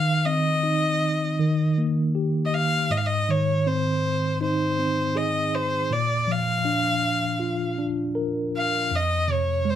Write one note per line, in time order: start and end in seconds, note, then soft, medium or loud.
0.00 1.34 D#3 medium
0.00 0.27 F5 medium
0.25 1.35 C4 soft
0.25 1.76 D#5 medium
0.63 1.36 D#4 soft
1.39 2.86 D#3 medium
1.78 2.87 A#3 soft
2.15 2.88 G4 soft
2.45 2.56 D#5 medium
2.54 2.92 F5 medium
2.90 5.87 G#2 soft
2.90 2.99 D#5 medium
2.97 3.08 F5 medium
3.06 3.32 D#5 medium
3.29 4.74 D#3 soft
3.29 3.69 C#5 medium
3.67 4.78 C4 soft
3.67 4.41 C5 medium
4.41 5.87 D#4 soft
4.41 5.19 C5 medium
4.79 5.88 C4 soft
5.15 5.88 G#4 soft
5.15 5.56 D#5 medium
5.55 5.94 C5 medium
5.91 8.87 A#2 medium
5.91 6.32 D5 medium
6.27 7.74 F3 soft
6.27 7.79 F5 medium
6.65 7.77 D4 soft
7.40 8.86 F4 soft
7.78 8.88 D4 soft
8.15 8.88 A#4 soft
8.57 8.97 F5 medium
8.91 9.76 F2 medium
8.95 9.34 D#5 medium
9.28 9.76 C3 soft
9.32 9.71 C#5 medium
9.65 9.76 G#3 soft
9.70 9.76 C5 medium